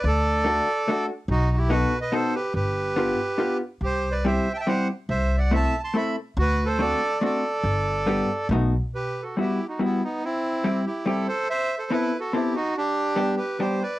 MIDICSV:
0, 0, Header, 1, 4, 480
1, 0, Start_track
1, 0, Key_signature, 1, "major"
1, 0, Tempo, 417246
1, 64, Time_signature, 3, 2, 24, 8
1, 3424, Tempo, 425230
1, 10154, Key_signature, 1, "minor"
1, 15856, End_track
2, 0, Start_track
2, 0, Title_t, "Accordion"
2, 0, Program_c, 0, 21
2, 41, Note_on_c, 0, 74, 105
2, 81, Note_on_c, 0, 69, 88
2, 1201, Note_off_c, 0, 74, 0
2, 1220, Note_off_c, 0, 69, 0
2, 1503, Note_on_c, 0, 63, 83
2, 1506, Note_on_c, 0, 66, 93
2, 1794, Note_off_c, 0, 63, 0
2, 1803, Note_on_c, 0, 67, 68
2, 1808, Note_on_c, 0, 64, 64
2, 1827, Note_off_c, 0, 66, 0
2, 1946, Note_on_c, 0, 71, 105
2, 1959, Note_off_c, 0, 64, 0
2, 1966, Note_on_c, 0, 66, 83
2, 1973, Note_off_c, 0, 67, 0
2, 2268, Note_off_c, 0, 66, 0
2, 2291, Note_off_c, 0, 71, 0
2, 2310, Note_on_c, 0, 75, 87
2, 2320, Note_on_c, 0, 71, 76
2, 2455, Note_on_c, 0, 72, 85
2, 2458, Note_off_c, 0, 71, 0
2, 2467, Note_off_c, 0, 75, 0
2, 2475, Note_on_c, 0, 69, 63
2, 2691, Note_off_c, 0, 69, 0
2, 2701, Note_on_c, 0, 71, 86
2, 2704, Note_off_c, 0, 72, 0
2, 2705, Note_on_c, 0, 67, 66
2, 2916, Note_off_c, 0, 67, 0
2, 2917, Note_off_c, 0, 71, 0
2, 2933, Note_on_c, 0, 67, 81
2, 2934, Note_on_c, 0, 71, 87
2, 4102, Note_off_c, 0, 67, 0
2, 4102, Note_off_c, 0, 71, 0
2, 4388, Note_on_c, 0, 67, 70
2, 4417, Note_on_c, 0, 72, 92
2, 4689, Note_off_c, 0, 67, 0
2, 4710, Note_on_c, 0, 71, 62
2, 4717, Note_on_c, 0, 74, 75
2, 4735, Note_off_c, 0, 72, 0
2, 4860, Note_off_c, 0, 71, 0
2, 4875, Note_on_c, 0, 72, 71
2, 4880, Note_off_c, 0, 74, 0
2, 4880, Note_on_c, 0, 76, 79
2, 5171, Note_off_c, 0, 72, 0
2, 5178, Note_off_c, 0, 76, 0
2, 5184, Note_on_c, 0, 79, 80
2, 5194, Note_on_c, 0, 76, 66
2, 5223, Note_on_c, 0, 81, 58
2, 5229, Note_off_c, 0, 79, 0
2, 5231, Note_off_c, 0, 76, 0
2, 5259, Note_on_c, 0, 79, 78
2, 5260, Note_on_c, 0, 76, 59
2, 5267, Note_off_c, 0, 81, 0
2, 5340, Note_off_c, 0, 76, 0
2, 5347, Note_off_c, 0, 79, 0
2, 5348, Note_on_c, 0, 72, 52
2, 5349, Note_on_c, 0, 78, 87
2, 5572, Note_off_c, 0, 72, 0
2, 5573, Note_off_c, 0, 78, 0
2, 5821, Note_on_c, 0, 76, 85
2, 5824, Note_on_c, 0, 72, 70
2, 6121, Note_off_c, 0, 72, 0
2, 6134, Note_on_c, 0, 74, 58
2, 6152, Note_off_c, 0, 76, 0
2, 6154, Note_on_c, 0, 78, 65
2, 6287, Note_off_c, 0, 74, 0
2, 6313, Note_off_c, 0, 78, 0
2, 6315, Note_on_c, 0, 76, 74
2, 6335, Note_on_c, 0, 81, 102
2, 6606, Note_off_c, 0, 76, 0
2, 6631, Note_off_c, 0, 81, 0
2, 6648, Note_on_c, 0, 81, 73
2, 6662, Note_on_c, 0, 84, 80
2, 6785, Note_off_c, 0, 81, 0
2, 6792, Note_on_c, 0, 76, 61
2, 6805, Note_on_c, 0, 83, 82
2, 6806, Note_off_c, 0, 84, 0
2, 7011, Note_off_c, 0, 76, 0
2, 7018, Note_off_c, 0, 83, 0
2, 7270, Note_on_c, 0, 66, 96
2, 7305, Note_on_c, 0, 71, 113
2, 7560, Note_off_c, 0, 66, 0
2, 7579, Note_on_c, 0, 69, 68
2, 7595, Note_on_c, 0, 72, 86
2, 7608, Note_off_c, 0, 71, 0
2, 7716, Note_off_c, 0, 69, 0
2, 7733, Note_on_c, 0, 69, 86
2, 7749, Note_off_c, 0, 72, 0
2, 7751, Note_on_c, 0, 74, 114
2, 8177, Note_off_c, 0, 69, 0
2, 8231, Note_off_c, 0, 74, 0
2, 8234, Note_on_c, 0, 69, 66
2, 8248, Note_on_c, 0, 74, 82
2, 9630, Note_off_c, 0, 69, 0
2, 9637, Note_off_c, 0, 74, 0
2, 10165, Note_on_c, 0, 71, 83
2, 10167, Note_on_c, 0, 67, 67
2, 10463, Note_off_c, 0, 67, 0
2, 10470, Note_on_c, 0, 69, 61
2, 10488, Note_on_c, 0, 66, 52
2, 10493, Note_off_c, 0, 71, 0
2, 10636, Note_off_c, 0, 66, 0
2, 10642, Note_off_c, 0, 69, 0
2, 10648, Note_on_c, 0, 67, 70
2, 10664, Note_on_c, 0, 64, 61
2, 10956, Note_off_c, 0, 64, 0
2, 10979, Note_off_c, 0, 67, 0
2, 10992, Note_on_c, 0, 66, 63
2, 10999, Note_on_c, 0, 63, 47
2, 11133, Note_off_c, 0, 63, 0
2, 11144, Note_off_c, 0, 66, 0
2, 11162, Note_on_c, 0, 64, 71
2, 11165, Note_on_c, 0, 59, 53
2, 11371, Note_off_c, 0, 59, 0
2, 11391, Note_off_c, 0, 64, 0
2, 11397, Note_on_c, 0, 63, 66
2, 11402, Note_on_c, 0, 59, 59
2, 11607, Note_off_c, 0, 59, 0
2, 11626, Note_off_c, 0, 63, 0
2, 11628, Note_on_c, 0, 60, 77
2, 11631, Note_on_c, 0, 64, 91
2, 12284, Note_off_c, 0, 60, 0
2, 12313, Note_off_c, 0, 64, 0
2, 12321, Note_on_c, 0, 67, 69
2, 12330, Note_on_c, 0, 64, 56
2, 12545, Note_off_c, 0, 64, 0
2, 12562, Note_on_c, 0, 69, 72
2, 12563, Note_off_c, 0, 67, 0
2, 12581, Note_on_c, 0, 64, 63
2, 12790, Note_off_c, 0, 69, 0
2, 12791, Note_off_c, 0, 64, 0
2, 12795, Note_on_c, 0, 72, 90
2, 12807, Note_on_c, 0, 69, 74
2, 13021, Note_off_c, 0, 69, 0
2, 13029, Note_off_c, 0, 72, 0
2, 13046, Note_on_c, 0, 72, 86
2, 13048, Note_on_c, 0, 76, 114
2, 13333, Note_off_c, 0, 72, 0
2, 13361, Note_on_c, 0, 72, 72
2, 13364, Note_off_c, 0, 76, 0
2, 13366, Note_on_c, 0, 69, 66
2, 13503, Note_off_c, 0, 69, 0
2, 13514, Note_on_c, 0, 71, 94
2, 13516, Note_off_c, 0, 72, 0
2, 13518, Note_on_c, 0, 64, 75
2, 13805, Note_off_c, 0, 64, 0
2, 13832, Note_on_c, 0, 69, 69
2, 13834, Note_off_c, 0, 71, 0
2, 13836, Note_on_c, 0, 66, 65
2, 13976, Note_off_c, 0, 66, 0
2, 13989, Note_off_c, 0, 69, 0
2, 14004, Note_on_c, 0, 64, 56
2, 14006, Note_on_c, 0, 67, 77
2, 14214, Note_off_c, 0, 64, 0
2, 14238, Note_off_c, 0, 67, 0
2, 14238, Note_on_c, 0, 66, 92
2, 14239, Note_on_c, 0, 63, 61
2, 14449, Note_off_c, 0, 63, 0
2, 14471, Note_off_c, 0, 66, 0
2, 14484, Note_on_c, 0, 62, 85
2, 14491, Note_on_c, 0, 67, 102
2, 15138, Note_off_c, 0, 67, 0
2, 15140, Note_off_c, 0, 62, 0
2, 15155, Note_on_c, 0, 67, 60
2, 15175, Note_on_c, 0, 71, 81
2, 15389, Note_off_c, 0, 67, 0
2, 15412, Note_on_c, 0, 67, 60
2, 15422, Note_on_c, 0, 72, 78
2, 15423, Note_off_c, 0, 71, 0
2, 15643, Note_off_c, 0, 67, 0
2, 15668, Note_on_c, 0, 71, 72
2, 15672, Note_off_c, 0, 72, 0
2, 15678, Note_on_c, 0, 74, 82
2, 15856, Note_off_c, 0, 71, 0
2, 15856, Note_off_c, 0, 74, 0
2, 15856, End_track
3, 0, Start_track
3, 0, Title_t, "Hollow-body jazz guitar"
3, 0, Program_c, 1, 26
3, 510, Note_on_c, 1, 57, 60
3, 520, Note_on_c, 1, 62, 55
3, 532, Note_on_c, 1, 66, 53
3, 533, Note_on_c, 1, 69, 65
3, 766, Note_off_c, 1, 57, 0
3, 772, Note_off_c, 1, 62, 0
3, 774, Note_off_c, 1, 66, 0
3, 777, Note_off_c, 1, 69, 0
3, 1013, Note_on_c, 1, 57, 72
3, 1026, Note_on_c, 1, 62, 74
3, 1036, Note_on_c, 1, 66, 72
3, 1040, Note_on_c, 1, 69, 70
3, 1255, Note_off_c, 1, 57, 0
3, 1263, Note_off_c, 1, 62, 0
3, 1265, Note_off_c, 1, 69, 0
3, 1266, Note_off_c, 1, 66, 0
3, 1955, Note_on_c, 1, 63, 56
3, 1960, Note_on_c, 1, 59, 59
3, 1962, Note_on_c, 1, 66, 53
3, 1970, Note_on_c, 1, 69, 61
3, 2206, Note_off_c, 1, 63, 0
3, 2208, Note_off_c, 1, 59, 0
3, 2211, Note_off_c, 1, 66, 0
3, 2211, Note_off_c, 1, 69, 0
3, 2438, Note_on_c, 1, 59, 57
3, 2444, Note_on_c, 1, 63, 56
3, 2451, Note_on_c, 1, 66, 52
3, 2454, Note_on_c, 1, 69, 65
3, 2688, Note_off_c, 1, 59, 0
3, 2692, Note_off_c, 1, 63, 0
3, 2694, Note_off_c, 1, 66, 0
3, 2697, Note_off_c, 1, 69, 0
3, 3409, Note_on_c, 1, 59, 65
3, 3418, Note_on_c, 1, 62, 62
3, 3423, Note_on_c, 1, 65, 64
3, 3436, Note_on_c, 1, 67, 57
3, 3658, Note_off_c, 1, 59, 0
3, 3662, Note_off_c, 1, 62, 0
3, 3666, Note_off_c, 1, 65, 0
3, 3668, Note_off_c, 1, 67, 0
3, 3879, Note_on_c, 1, 62, 59
3, 3884, Note_on_c, 1, 59, 57
3, 3888, Note_on_c, 1, 65, 66
3, 3898, Note_on_c, 1, 67, 69
3, 4136, Note_off_c, 1, 59, 0
3, 4137, Note_off_c, 1, 62, 0
3, 4141, Note_off_c, 1, 65, 0
3, 4143, Note_off_c, 1, 67, 0
3, 4860, Note_on_c, 1, 55, 67
3, 4866, Note_on_c, 1, 60, 48
3, 4872, Note_on_c, 1, 64, 64
3, 4880, Note_on_c, 1, 67, 72
3, 5107, Note_off_c, 1, 55, 0
3, 5107, Note_off_c, 1, 60, 0
3, 5112, Note_off_c, 1, 64, 0
3, 5117, Note_off_c, 1, 67, 0
3, 5334, Note_on_c, 1, 55, 64
3, 5339, Note_on_c, 1, 60, 60
3, 5347, Note_on_c, 1, 64, 58
3, 5355, Note_on_c, 1, 67, 66
3, 5582, Note_off_c, 1, 55, 0
3, 5585, Note_off_c, 1, 60, 0
3, 5590, Note_off_c, 1, 64, 0
3, 5590, Note_off_c, 1, 67, 0
3, 6288, Note_on_c, 1, 57, 56
3, 6294, Note_on_c, 1, 60, 64
3, 6302, Note_on_c, 1, 64, 64
3, 6311, Note_on_c, 1, 69, 54
3, 6535, Note_off_c, 1, 57, 0
3, 6538, Note_off_c, 1, 60, 0
3, 6543, Note_off_c, 1, 64, 0
3, 6545, Note_off_c, 1, 69, 0
3, 6766, Note_on_c, 1, 57, 59
3, 6777, Note_on_c, 1, 60, 50
3, 6778, Note_on_c, 1, 64, 55
3, 6788, Note_on_c, 1, 69, 74
3, 7016, Note_off_c, 1, 57, 0
3, 7018, Note_off_c, 1, 60, 0
3, 7021, Note_off_c, 1, 64, 0
3, 7026, Note_off_c, 1, 69, 0
3, 7729, Note_on_c, 1, 57, 76
3, 7737, Note_on_c, 1, 60, 59
3, 7738, Note_on_c, 1, 62, 60
3, 7746, Note_on_c, 1, 66, 62
3, 7971, Note_off_c, 1, 57, 0
3, 7972, Note_off_c, 1, 60, 0
3, 7975, Note_off_c, 1, 62, 0
3, 7977, Note_off_c, 1, 66, 0
3, 8207, Note_on_c, 1, 57, 63
3, 8213, Note_on_c, 1, 60, 58
3, 8221, Note_on_c, 1, 62, 61
3, 8227, Note_on_c, 1, 66, 58
3, 8451, Note_off_c, 1, 57, 0
3, 8452, Note_off_c, 1, 60, 0
3, 8457, Note_off_c, 1, 62, 0
3, 8458, Note_off_c, 1, 66, 0
3, 9169, Note_on_c, 1, 55, 66
3, 9173, Note_on_c, 1, 59, 64
3, 9179, Note_on_c, 1, 62, 71
3, 9185, Note_on_c, 1, 67, 77
3, 9416, Note_off_c, 1, 59, 0
3, 9418, Note_off_c, 1, 55, 0
3, 9421, Note_off_c, 1, 62, 0
3, 9424, Note_off_c, 1, 67, 0
3, 9671, Note_on_c, 1, 57, 81
3, 9679, Note_on_c, 1, 59, 65
3, 9686, Note_on_c, 1, 66, 86
3, 9688, Note_on_c, 1, 63, 67
3, 9915, Note_off_c, 1, 57, 0
3, 9919, Note_off_c, 1, 59, 0
3, 9921, Note_off_c, 1, 63, 0
3, 9922, Note_off_c, 1, 66, 0
3, 10637, Note_on_c, 1, 55, 56
3, 10643, Note_on_c, 1, 59, 49
3, 10650, Note_on_c, 1, 64, 55
3, 10658, Note_on_c, 1, 66, 58
3, 10885, Note_off_c, 1, 55, 0
3, 10885, Note_off_c, 1, 59, 0
3, 10891, Note_off_c, 1, 64, 0
3, 10893, Note_off_c, 1, 66, 0
3, 11116, Note_on_c, 1, 55, 64
3, 11121, Note_on_c, 1, 59, 61
3, 11127, Note_on_c, 1, 64, 52
3, 11135, Note_on_c, 1, 66, 62
3, 11362, Note_off_c, 1, 55, 0
3, 11364, Note_off_c, 1, 59, 0
3, 11367, Note_off_c, 1, 64, 0
3, 11371, Note_off_c, 1, 66, 0
3, 12077, Note_on_c, 1, 55, 60
3, 12082, Note_on_c, 1, 60, 53
3, 12090, Note_on_c, 1, 64, 60
3, 12095, Note_on_c, 1, 67, 58
3, 12317, Note_off_c, 1, 55, 0
3, 12317, Note_off_c, 1, 60, 0
3, 12323, Note_off_c, 1, 67, 0
3, 12324, Note_off_c, 1, 64, 0
3, 12545, Note_on_c, 1, 55, 63
3, 12552, Note_on_c, 1, 60, 64
3, 12560, Note_on_c, 1, 64, 52
3, 12561, Note_on_c, 1, 67, 72
3, 12789, Note_off_c, 1, 55, 0
3, 12794, Note_off_c, 1, 60, 0
3, 12795, Note_off_c, 1, 64, 0
3, 12797, Note_off_c, 1, 67, 0
3, 13503, Note_on_c, 1, 59, 65
3, 13511, Note_on_c, 1, 60, 55
3, 13518, Note_on_c, 1, 64, 61
3, 13523, Note_on_c, 1, 69, 55
3, 13741, Note_off_c, 1, 59, 0
3, 13743, Note_off_c, 1, 60, 0
3, 13748, Note_off_c, 1, 69, 0
3, 13750, Note_off_c, 1, 64, 0
3, 13986, Note_on_c, 1, 59, 60
3, 13994, Note_on_c, 1, 60, 64
3, 13999, Note_on_c, 1, 69, 68
3, 14004, Note_on_c, 1, 64, 56
3, 14222, Note_off_c, 1, 59, 0
3, 14224, Note_off_c, 1, 60, 0
3, 14228, Note_off_c, 1, 69, 0
3, 14230, Note_off_c, 1, 64, 0
3, 14921, Note_on_c, 1, 55, 55
3, 14926, Note_on_c, 1, 59, 52
3, 14934, Note_on_c, 1, 62, 51
3, 14937, Note_on_c, 1, 67, 62
3, 15166, Note_off_c, 1, 55, 0
3, 15170, Note_off_c, 1, 59, 0
3, 15170, Note_off_c, 1, 62, 0
3, 15174, Note_off_c, 1, 67, 0
3, 15415, Note_on_c, 1, 55, 54
3, 15417, Note_on_c, 1, 62, 50
3, 15420, Note_on_c, 1, 59, 39
3, 15427, Note_on_c, 1, 67, 56
3, 15661, Note_off_c, 1, 59, 0
3, 15662, Note_off_c, 1, 55, 0
3, 15664, Note_off_c, 1, 62, 0
3, 15665, Note_off_c, 1, 67, 0
3, 15856, End_track
4, 0, Start_track
4, 0, Title_t, "Upright bass"
4, 0, Program_c, 2, 32
4, 43, Note_on_c, 2, 38, 90
4, 671, Note_off_c, 2, 38, 0
4, 1474, Note_on_c, 2, 35, 88
4, 2105, Note_off_c, 2, 35, 0
4, 2920, Note_on_c, 2, 31, 79
4, 3558, Note_off_c, 2, 31, 0
4, 4363, Note_on_c, 2, 36, 78
4, 4997, Note_off_c, 2, 36, 0
4, 5808, Note_on_c, 2, 36, 88
4, 6435, Note_off_c, 2, 36, 0
4, 7252, Note_on_c, 2, 38, 106
4, 7873, Note_off_c, 2, 38, 0
4, 8684, Note_on_c, 2, 31, 91
4, 9319, Note_off_c, 2, 31, 0
4, 9647, Note_on_c, 2, 35, 95
4, 9971, Note_off_c, 2, 35, 0
4, 15856, End_track
0, 0, End_of_file